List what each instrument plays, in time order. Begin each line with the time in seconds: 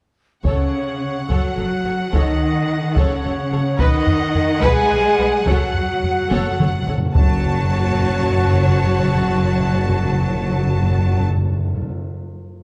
0.44 double bass section F#1, cello section C#3, french horn section C#4, viola section A4, violin section C#5 F#5, flute section C#5, trumpet section C#5, taiko
1.29 double bass section F#1, cello section F#3, french horn section F#4, viola section A4, violin section C#5, trumpet section F#5, flute section F#5, taiko
1.56 double bass section F#1, viola section A4, violin section C#5
1.85 double bass section F#1, viola section A4, violin section C#5
2.12 double bass section F#1, cello section D#3, french horn section D#4, viola section A4, violin section C#5, flute section D#5, trumpet section D#5, taiko
2.96 double bass section F#1, cello section C#3, french horn section C#4, viola section A4, flute section C#5, trumpet section C#5, violin section C#5, taiko
3.23 double bass section F#1, viola section A4, violin section C#5
3.51 double bass section F#1, viola section A4, violin section C#5
3.79 double bass section B1, cello section D#3, french horn section D#4, viola section B4, violin section B4 F#5, trumpet section D#5, flute section D#5, taiko
4.07 taiko low
4.35 taiko low
4.62 double bass section B1, cello section G#3, french horn section G#4, viola section B4, violin section B4, trumpet section G#5, flute section G#5, taiko
4.91 double bass section B1, viola section B4, violin section B4
5.19 double bass section B1, violin section B4, viola section B4
5.46 double bass section F#1, cello section F#3, french horn section F#4, viola section A4, violin section C#5, flute section F#5, trumpet section F#5, taiko
5.55 timpani F#2
5.62 timpani F#2
5.74 taiko low
5.85 timpani F#2
5.92 timpani F#2
5.99 timpani F#2, taiko low
6.07 timpani F#2
6.14 timpani F#2
6.22 timpani F#2
6.29 double bass section F#1, timpani F#2, viola section A4, violin section C#5, taiko high
6.36 timpani F#2
6.43 timpani F#2
6.51 timpani F#2
6.59 double bass section F#1, timpani F#2, viola section A4, violin section C#5, taiko mid
6.66 timpani F#2
6.74 timpani F#2
6.82 timpani F#2
6.87 double bass section F#1, timpani F#2, viola section A4, violin section C#5, taiko low
6.97 timpani F#2
7.05 timpani F#2
7.14 double bass section F#1, timpani F#2, cello section F#3, french horn section F#4, trumpet section F#4, viola section F#4, violin section C#5 A5, flute section F#5, taiko
7.22 timpani F#2
7.29 timpani F#2
7.37 timpani F#2
7.45 timpani F#2
7.53 timpani F#2
7.61 timpani F#2
7.69 timpani F#2
7.78 timpani F#2
7.85 timpani F#2
7.92 timpani F#2
8.00 timpani F#2
8.07 timpani F#2
8.15 timpani F#2
8.22 timpani F#2
8.30 timpani F#2
8.37 timpani F#2
8.45 timpani F#2
8.52 timpani F#2
8.60 timpani F#2
8.67 timpani F#2
8.75 timpani F#2
8.83 timpani F#2
8.91 timpani F#2
8.99 timpani F#2
9.07 timpani F#2
9.14 timpani F#2
9.21 timpani F#2
9.29 timpani F#2
9.36 timpani F#2
9.44 timpani F#2
9.52 timpani F#2
9.59 timpani F#2
9.66 timpani F#2
9.74 timpani F#2
9.81 timpani F#2
9.89 timpani F#2
9.97 timpani F#2
10.04 timpani F#2
10.12 timpani F#2
10.20 timpani F#2
10.27 timpani F#2
10.34 timpani F#2
10.42 timpani F#2
10.50 timpani F#2
10.58 timpani F#2
10.66 timpani F#2
10.74 timpani F#2
10.82 timpani F#2
10.90 timpani F#2
10.98 timpani F#2
11.05 timpani F#2
11.13 timpani F#2
11.20 timpani F#2
11.29 timpani F#2
11.36 timpani F#2
11.44 timpani F#2
11.52 timpani F#2
11.59 timpani F#2
11.66 timpani F#2
11.75 timpani F#2
11.82 timpani F#2
11.89 timpani F#2